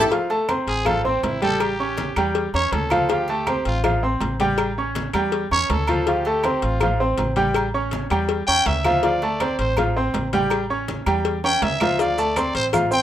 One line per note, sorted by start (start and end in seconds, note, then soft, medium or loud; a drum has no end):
0.11 0.27 F3 medium
0.11 0.27 F4 medium
0.11 0.27 F5 medium
0.11 cowbell loud
0.11 high conga soft
0.11 low agogo medium
0.30 0.45 A3 medium
0.30 0.46 A4 medium
0.30 0.46 A5 medium
0.30 high conga soft
0.30 low agogo medium
0.49 0.79 C4 medium
0.49 0.80 C5 medium
0.49 0.80 C6 medium
0.49 cowbell medium
0.49 high conga medium
0.49 low timbale medium
0.49 low agogo loud
0.49 claves medium
0.67 1.19 A1 medium
0.67 0.88 G#4 loud
0.67 cowbell medium
0.67 high conga soft
0.85 1.01 F3 medium
0.85 1.01 F4 medium
0.85 1.05 A4 medium
0.85 1.01 F5 medium
0.85 cowbell loud
0.85 high conga soft
0.85 low conga medium
0.85 low agogo loud
0.85 claves medium
1.05 1.35 C4 medium
1.05 1.26 C4 medium
1.05 1.36 C5 medium
1.05 1.36 C6 medium
1.05 high conga soft
1.05 low conga medium
1.23 2.11 A1 medium
1.23 1.42 E4 medium
1.23 cowbell medium
1.23 high conga medium
1.23 low timbale medium
1.23 low agogo medium
1.42 1.73 G3 medium
1.42 1.73 G4 medium
1.42 1.63 A4 loud
1.42 1.73 G5 medium
1.42 cowbell medium
1.42 high conga medium
1.60 2.36 G4 medium
1.60 cowbell loud
1.60 high conga soft
1.60 low agogo loud
1.60 claves medium
1.80 2.10 C#4 medium
1.80 2.10 C#5 medium
1.80 2.10 C#6 medium
1.80 high conga soft
1.97 cowbell medium
1.97 high conga loud
1.97 low timbale medium
1.97 low agogo medium
2.16 2.51 E2 medium
2.16 2.48 G3 medium
2.16 2.48 G4 medium
2.16 2.48 G5 medium
2.16 cowbell medium
2.16 high conga soft
2.16 low agogo loud
2.16 claves medium
2.35 cowbell loud
2.35 high conga soft
2.54 2.71 E2 medium
2.54 2.85 C#4 medium
2.54 2.85 C#5 medium
2.54 2.75 C#5 loud
2.54 2.85 C#6 medium
2.54 high conga soft
2.54 low agogo medium
2.72 3.59 D2 medium
2.72 3.12 A4 medium
2.72 cowbell medium
2.72 high conga medium
2.72 low timbale medium
2.72 low agogo medium
2.90 3.06 F3 medium
2.90 3.07 F4 medium
2.90 3.07 F5 medium
2.90 cowbell medium
2.90 high conga medium
2.90 low agogo loud
2.90 claves medium
3.09 3.25 F3 medium
3.09 3.25 F4 medium
3.09 3.66 G4 medium
3.09 3.25 F5 medium
3.09 cowbell loud
3.09 high conga soft
3.09 low agogo medium
3.28 3.44 A3 medium
3.28 3.45 A4 medium
3.28 3.45 A5 medium
3.28 high conga soft
3.28 low agogo medium
3.47 3.78 C4 medium
3.47 3.78 C5 medium
3.47 3.78 C6 medium
3.47 cowbell medium
3.47 high conga medium
3.47 low timbale medium
3.47 low agogo loud
3.47 claves medium
3.65 4.17 A1 loud
3.65 3.84 F4 medium
3.65 cowbell medium
3.65 high conga soft
3.84 3.99 F3 medium
3.84 4.00 F4 medium
3.84 4.00 F5 medium
3.84 cowbell loud
3.84 high conga soft
3.84 low conga medium
3.84 low agogo loud
3.84 claves medium
4.03 4.33 C4 medium
4.03 4.34 C5 medium
4.03 4.34 C6 medium
4.03 high conga soft
4.21 5.08 A1 medium
4.21 cowbell medium
4.21 high conga medium
4.21 low timbale medium
4.21 low agogo medium
4.40 4.71 G3 medium
4.40 4.71 G4 medium
4.40 4.71 G5 loud
4.40 cowbell medium
4.40 high conga medium
4.58 cowbell loud
4.58 low agogo loud
4.58 claves medium
4.78 5.08 C#4 medium
4.78 5.08 C#5 medium
4.78 5.08 C#6 medium
4.78 high conga soft
4.95 cowbell medium
4.95 high conga loud
4.95 low timbale medium
4.95 low agogo medium
5.13 5.48 E2 loud
5.13 5.45 G3 medium
5.13 5.45 G4 medium
5.13 5.45 G5 medium
5.13 cowbell medium
5.13 high conga soft
5.13 low agogo loud
5.13 claves medium
5.32 cowbell loud
5.32 high conga soft
5.51 5.69 E2 medium
5.51 5.82 C#4 medium
5.51 5.82 C#5 medium
5.51 5.72 C#5 loud
5.51 5.82 C#6 medium
5.51 high conga soft
5.51 low agogo medium
5.70 6.57 D2 medium
5.70 6.10 A4 medium
5.70 cowbell medium
5.70 high conga medium
5.70 low timbale medium
5.70 low agogo medium
5.87 6.04 F3 medium
5.87 6.04 F4 medium
5.87 6.04 F5 medium
5.87 cowbell medium
5.87 high conga medium
5.87 low agogo loud
5.87 claves medium
6.07 6.23 F3 medium
6.07 6.23 F4 medium
6.07 6.65 G4 medium
6.07 6.23 F5 medium
6.07 cowbell loud
6.07 high conga soft
6.07 low agogo medium
6.25 6.41 A3 medium
6.25 6.41 A4 medium
6.25 6.42 A5 medium
6.25 high conga soft
6.25 low agogo medium
6.43 6.75 C4 medium
6.43 6.75 C5 medium
6.43 6.75 C6 medium
6.43 cowbell medium
6.43 high conga medium
6.43 low timbale medium
6.43 low agogo loud
6.43 claves medium
6.62 7.14 A1 loud
6.62 6.81 F4 medium
6.62 cowbell medium
6.62 high conga soft
6.80 6.97 F3 medium
6.80 6.97 F4 medium
6.80 6.97 F5 medium
6.80 cowbell loud
6.80 high conga soft
6.80 low conga medium
6.80 low agogo loud
6.80 claves medium
7.00 7.30 C4 medium
7.00 7.30 C5 medium
7.00 7.31 C6 medium
7.00 high conga soft
7.18 8.05 A1 loud
7.18 cowbell medium
7.18 high conga medium
7.18 low timbale medium
7.18 low agogo medium
7.36 7.67 G3 medium
7.36 7.67 G4 medium
7.36 7.67 G5 medium
7.36 cowbell medium
7.36 high conga medium
7.54 cowbell loud
7.54 high conga soft
7.54 low agogo loud
7.54 claves medium
7.74 8.04 C#4 medium
7.74 8.05 C#5 medium
7.74 8.05 C#6 medium
7.74 high conga soft
7.91 cowbell medium
7.91 high conga loud
7.91 low timbale medium
7.91 low agogo medium
8.10 8.45 E2 medium
8.10 8.41 G3 medium
8.10 8.41 G4 medium
8.10 8.42 G5 medium
8.10 cowbell medium
8.10 high conga soft
8.10 low agogo loud
8.10 claves medium
8.29 cowbell loud
8.29 high conga soft
8.47 8.65 E2 medium
8.47 8.78 C#4 medium
8.47 8.78 C#5 medium
8.47 8.69 G5 loud
8.47 8.78 C#6 medium
8.47 high conga soft
8.47 low agogo medium
8.66 9.53 D2 medium
8.66 9.05 E5 loud
8.66 cowbell medium
8.66 high conga medium
8.66 low timbale medium
8.66 low agogo medium
8.84 9.00 F3 loud
8.84 9.00 F4 medium
8.84 9.01 F5 medium
8.84 cowbell medium
8.84 high conga medium
8.84 low agogo loud
8.84 claves medium
9.03 9.19 F3 medium
9.03 9.19 F4 medium
9.03 9.59 D5 medium
9.03 9.19 F5 medium
9.03 cowbell loud
9.03 high conga soft
9.03 low agogo medium
9.22 9.37 A3 medium
9.22 9.38 A4 medium
9.22 9.38 A5 medium
9.22 high conga soft
9.22 low agogo medium
9.40 9.71 C4 medium
9.40 9.71 C5 medium
9.40 9.72 C6 medium
9.40 cowbell medium
9.40 high conga medium
9.40 low timbale medium
9.40 low agogo loud
9.40 claves medium
9.59 10.10 A1 loud
9.59 9.76 C5 medium
9.59 cowbell medium
9.59 high conga soft
9.77 9.93 F3 medium
9.77 9.93 F4 medium
9.77 9.93 F5 medium
9.77 cowbell loud
9.77 high conga soft
9.77 low conga medium
9.77 low agogo loud
9.77 claves medium
9.96 10.27 C4 medium
9.96 10.27 C5 medium
9.96 10.27 C6 medium
9.96 high conga soft
10.14 11.01 A1 medium
10.14 cowbell medium
10.14 high conga medium
10.14 low timbale medium
10.14 low agogo medium
10.33 10.63 G3 loud
10.33 10.64 G4 medium
10.33 10.64 G5 medium
10.33 cowbell medium
10.33 high conga medium
10.50 cowbell loud
10.50 high conga soft
10.50 low agogo loud
10.50 claves medium
10.70 11.00 C#4 medium
10.70 11.00 C#5 medium
10.70 11.01 C#6 medium
10.70 high conga soft
10.88 cowbell medium
10.88 high conga loud
10.88 low timbale medium
10.88 low agogo medium
11.06 11.58 E2 medium
11.06 11.37 G3 medium
11.06 11.37 G4 medium
11.06 11.37 G5 medium
11.06 cowbell medium
11.06 high conga soft
11.06 low agogo loud
11.06 claves medium
11.25 cowbell loud
11.25 high conga soft
11.44 11.74 C#4 medium
11.44 11.74 C#5 medium
11.44 11.65 G5 loud
11.44 11.75 C#6 medium
11.44 high conga soft
11.44 high timbale medium
11.44 low agogo medium
11.62 12.49 D2 medium
11.62 12.02 E5 loud
11.62 cowbell medium
11.62 high conga medium
11.62 low timbale loud
11.62 low agogo medium
11.80 11.97 F3 medium
11.80 11.97 F4 medium
11.80 11.97 F5 medium
11.80 cowbell medium
11.80 high conga medium
11.80 low timbale loud
11.80 low agogo loud
11.80 claves medium
11.99 12.15 F3 medium
11.99 12.15 F4 medium
11.99 12.55 D5 medium
11.99 12.15 F5 medium
11.99 cowbell loud
11.99 high conga soft
11.99 low agogo medium
11.99 maracas medium
12.18 12.33 A3 medium
12.18 12.33 A4 medium
12.18 12.33 A5 medium
12.18 high conga soft
12.18 low agogo medium
12.18 maracas medium
12.36 12.67 C4 medium
12.36 12.67 C5 medium
12.36 12.67 C6 medium
12.36 cowbell medium
12.36 high conga medium
12.36 low timbale medium
12.36 low agogo loud
12.36 claves medium
12.36 maracas medium
12.55 13.02 A1 loud
12.55 12.66 C5 loud
12.55 cowbell medium
12.55 high conga soft
12.55 maracas soft
12.73 12.88 F3 medium
12.73 12.89 F4 medium
12.73 12.89 F5 medium
12.73 cowbell loud
12.73 high conga soft
12.73 low conga medium
12.73 low agogo loud
12.73 claves medium
12.73 maracas medium
12.91 13.02 C4 medium
12.91 13.02 C5 medium
12.91 13.02 G5 loud
12.91 13.02 C6 medium
12.91 maracas medium